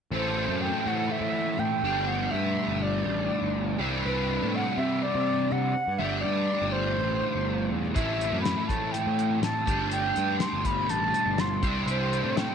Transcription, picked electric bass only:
0.11 A1
0.48 F#2
0.86 A2
1.21 A2
1.59 A2
1.83 G1
2.33 G2
2.68 G1
3.06 A1
3.42 G1
3.79 C2
4.05 C2
4.43 A2
4.77 C3
5.15 C3
5.52 C3
5.87 G2
6.00 G1
6.24 G2
6.61 G1
6.98 A1
7.35 G1
7.71 E2
7.96 A1
8.32 F#2
8.69 A2
9.07 A2
9.42 A2
9.67 G1
10.17 G2
10.53 G1
10.89 A1
11.26 G1
11.63 C2
11.87 C2
12.24 A2

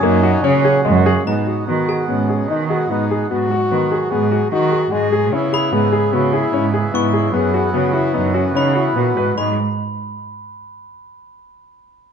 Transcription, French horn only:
0.03 D#4
0.44 C#4
0.85 C#4
1.26 D#4
1.68 F#4
2.09 C#4
2.49 D#4
2.70 F#4
2.91 D#4
3.31 F#4
4.11 G#4
4.52 F#4
4.92 G#4
5.33 E4
5.73 G#4
6.14 F#4
6.33 E4
6.93 E4
7.33 G#4
7.73 F#4
7.94 E4
8.15 D#4
8.35 C#4
8.56 D#4
8.76 E4
8.97 F#4
9.37 D#4

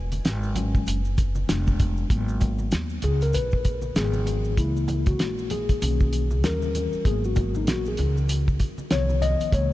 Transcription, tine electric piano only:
Already playing: B4 G#5
0.56 F#3 G#3 C#4
1.48 G#3 B3 D4
2.10 F#3 A#3 B3
3.04 G#4
3.23 A#4
3.34 B4
3.95 D#3 F3 B3 G#4
4.57 E3 G#3 A#3 E4
5.08 F#4
5.51 G#4
5.82 D#3 A#3 C#4
6.44 E3 G3 C#4 A#4
7.06 F#3 A#3 B3 G#4
7.26 F#4
7.57 D#4
7.69 F#4
7.88 G#4
8.91 D#3 F3 B3 C#5
9.22 D#5
9.53 E3 G#3 A#3 C#5

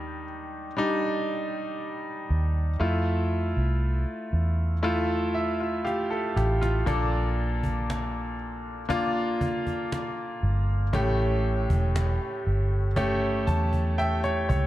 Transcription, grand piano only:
Already playing: D#3 G3 D4 D#4
0.77 G3 D4 D#4
2.80 A3 E4 F4
4.83 A3 E4 F4
5.34 E5
5.60 F4
5.85 G4 F5
6.10 A4
6.36 G4
6.61 F4
6.86 A#2 A#3 D4 A4
8.89 A#3 D4 F4
10.93 A2 A3 C#4 G4
12.96 A3 C#4 G4
13.47 A5
13.98 E5 G5
14.24 C#5
14.49 C#5

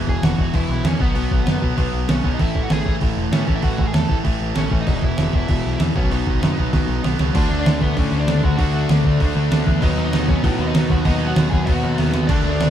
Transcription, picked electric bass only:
0.07 E1
0.23 E1
0.39 E1
0.54 E1
0.69 B1
0.84 E2
1.01 B1
1.16 B1
1.31 B1
1.47 F#2
1.62 B1
1.78 B1
1.94 B1
2.09 B1
2.24 B1
2.39 A1
2.55 A1
2.71 A1
2.86 A1
3.01 A1
3.17 E1
3.32 A2
3.48 A1
3.63 A1
3.79 A1
3.94 E2
4.09 A1
4.25 A1
4.41 A1
4.57 A1
4.72 A1
4.87 E1
5.03 E1
5.19 E1
5.34 E1
5.49 E1
5.66 B1
5.81 E2
5.96 B1
6.12 B1
6.27 B1
6.43 F#2
6.58 B1
6.73 B1
6.89 B1
7.04 B1
7.20 C#2
7.35 D2
7.50 D2
7.66 D2
7.97 A2
8.12 D2
8.27 D2
8.43 D2
8.59 D2
8.89 D2
9.05 D2
9.20 D2
9.36 D2
9.51 D2
9.66 E2
9.82 D#2
9.98 D#2
10.13 D#2
10.44 A2
10.59 D#2
10.75 D#2
10.90 D#2
11.06 D#2
11.37 D#2
11.52 D#2
11.67 D#2
11.84 D#2
11.99 D#2
12.14 D#2
12.29 D2
12.44 D2
12.60 D2

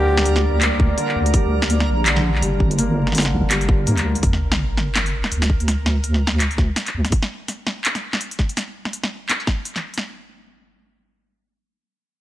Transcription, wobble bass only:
Already playing: D2
1.16 D2
1.88 A#1
2.42 G1
2.60 G1
3.32 A#1
3.43 G1
3.87 G2
3.97 D2
4.23 G1
5.32 D2
6.94 D2

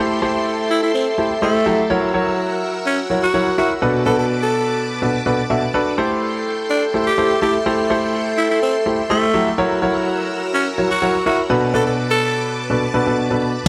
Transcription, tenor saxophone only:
0.70 E4
0.83 E4
0.94 C4
1.42 A3
2.86 C#4
3.23 F#4
3.58 F#4
4.06 A4
4.19 A4
4.43 A4
6.70 D4
7.07 G4
7.42 G4
8.38 E4
8.51 E4
8.62 C4
9.10 A3
10.54 C#4
10.91 F#4
11.26 F#4
11.74 A4
11.87 A4
12.11 A4

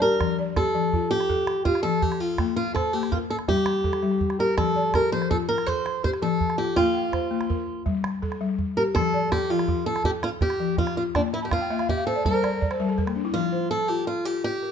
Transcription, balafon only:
0.02 G4
0.20 F3
0.38 D5
0.56 G4
0.75 F3
0.93 F4
1.30 A4
1.66 G4
1.84 F3
2.20 F4
2.39 A#3
2.75 C5
2.94 A#3
3.12 A#4
3.48 G3
3.84 A4
4.03 G3
4.39 G4
4.57 F3
4.76 D5
4.94 G4
5.12 F3
5.30 F4
5.67 A4
6.03 G4
6.22 F3
6.58 F4
6.76 A#3
6.94 G5
7.12 C5
7.31 A#3
7.50 A#4
7.86 G3
8.22 A4
8.41 G3
8.77 G4
8.96 F3
9.14 D5
9.32 G4
9.51 F3
9.68 F4
10.05 A4
10.42 G4
10.60 F3
10.97 F4
11.15 A#3
11.42 A5
11.51 F5
11.61 G5
11.70 A#3 E5
11.80 F5
11.89 E5
11.98 F5
12.07 C5
12.16 D5
12.25 G3 A#4
12.34 C5
12.43 D5
12.52 A#4
12.61 D5
12.71 C5
12.80 G3 A#4
12.89 A4
12.98 A#4
13.07 A#3
13.16 D4
13.25 E4
13.34 F3
13.52 C5
13.89 F4
14.25 F4
14.63 A#4

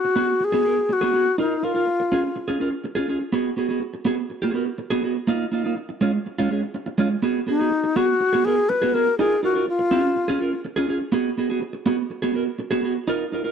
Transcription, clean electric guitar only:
0.05 muted clean electric guitar stroke
0.16 B3 F#4 G#4
0.28 muted clean electric guitar stroke
0.40 muted clean electric guitar stroke
0.52 B3 F#4 G#4
0.65 B3 F#4 A#4
0.77 muted clean electric guitar stroke
0.89 muted clean electric guitar stroke
1.01 B3 F#4 G#4
1.13 B3 F#4 G#4
1.26 muted clean electric guitar stroke
1.38 D#4 F4 A#4
1.63 D#4 F4 A#4
1.75 D#4 F4 A#4
1.87 muted clean electric guitar stroke
2.00 muted clean electric guitar stroke
2.12 C#4 F4 G#4
2.24 muted clean electric guitar stroke
2.36 muted clean electric guitar stroke
2.48 C#4 F4 G#4
2.60 C#4 F4 A#4
2.71 muted clean electric guitar stroke
2.84 muted clean electric guitar stroke
2.95 C#4 F4 G#4
3.08 C#4 F4 G#4
3.20 muted clean electric guitar stroke
3.32 B3 F#4 G#4
3.57 B3 F#4 G#4
3.69 B3 F#4 G#4
3.82 muted clean electric guitar stroke
3.94 muted clean electric guitar stroke
4.05 B3 F#4 G#4
4.18 muted clean electric guitar stroke
4.30 muted clean electric guitar stroke
4.42 B3 F#4 G#4
4.54 B3 F#4 A#4
4.66 muted clean electric guitar stroke
4.78 muted clean electric guitar stroke
4.90 B3 F#4 G#4
5.03 B3 F#4 G#4
5.15 muted clean electric guitar stroke
5.27 A#3 D#4 F4
5.52 A#3 D#4 F4
5.64 A#3 D#4 F4
5.77 muted clean electric guitar stroke
5.89 muted clean electric guitar stroke
6.01 G#3 C#4 F4
6.14 muted clean electric guitar stroke
6.26 muted clean electric guitar stroke
6.38 G#3 C#4 F4
6.50 G#3 C#4 G#4
6.63 muted clean electric guitar stroke
6.74 muted clean electric guitar stroke
6.86 muted clean electric guitar stroke
6.98 G#3 C#4 F4
7.11 muted clean electric guitar stroke
7.22 B3 F#4 G#4
7.47 B3 F#4 G#4
7.60 B3 F#4 G#4
7.71 muted clean electric guitar stroke
7.84 muted clean electric guitar stroke
7.96 B3 F#4 G#4
8.08 muted clean electric guitar stroke
8.20 muted clean electric guitar stroke
8.33 B3 F#4 G#4
8.45 B3 F#4 A#4
8.58 muted clean electric guitar stroke
8.70 muted clean electric guitar stroke
8.82 B3 F#4 G#4
8.94 B3 F#4 G#4
9.07 muted clean electric guitar stroke
9.19 D#4 F4 A#4
9.43 D#4 F4 A#4
9.55 D#4 F4 A#4
9.68 muted clean electric guitar stroke
9.79 muted clean electric guitar stroke
9.91 C#4 F4 G#4
10.04 muted clean electric guitar stroke
10.16 muted clean electric guitar stroke
10.28 C#4 F4 G#4
10.41 C#4 F4 A#4
10.53 muted clean electric guitar stroke
10.65 muted clean electric guitar stroke
10.76 C#4 F4 G#4
10.88 C#4 F4 G#4
11.01 muted clean electric guitar stroke
11.12 B3 F#4 G#4
11.38 B3 F#4 G#4
11.50 B3 F#4 G#4
11.62 muted clean electric guitar stroke
11.73 muted clean electric guitar stroke
11.86 B3 F#4 G#4
11.98 muted clean electric guitar stroke
12.10 muted clean electric guitar stroke
12.22 B3 F#4 G#4
12.34 B3 F#4 A#4
12.46 muted clean electric guitar stroke
12.59 muted clean electric guitar stroke
12.71 B3 F#4 G#4
12.83 B3 F#4 G#4
12.96 muted clean electric guitar stroke
13.07 D#4 F4 A#4
13.32 D#4 F4 A#4
13.44 D#4 F4 A#4

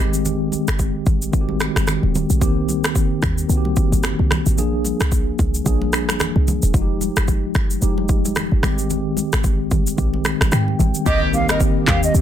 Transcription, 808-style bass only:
0.00 G#1
0.68 G1
1.07 G#1
1.33 G#1
1.76 G1
2.03 D#1
2.30 A#1
2.41 C2
2.84 D#2
3.23 D#2
3.49 C2
3.92 G1
4.19 C2
4.46 G#1
4.58 A#1
5.00 C2
5.39 C2
5.66 A#1
6.09 G#1
6.36 C2
6.63 D#1
6.74 F1
7.17 G1
7.55 G1
7.82 F1
8.25 D#1
8.52 G1
8.63 G#1
9.33 G#1
9.71 A#1
9.98 A#1
10.41 G#1
10.52 G#2
10.79 G#1
11.06 C2
11.49 D#2
11.88 D#2
12.14 C2

